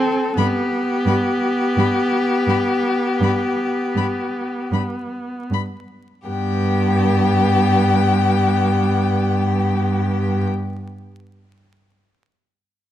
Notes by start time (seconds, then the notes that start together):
Already playing: C4 A4
0.37 G2 B3 G4 B5
1.06 G2 B5
1.77 G2 B5
2.47 G2 B5
3.21 G2 B5
3.95 G2 B5
4.72 G2 B5
5.51 G2 B5
6.27 G2 B3 G4 G5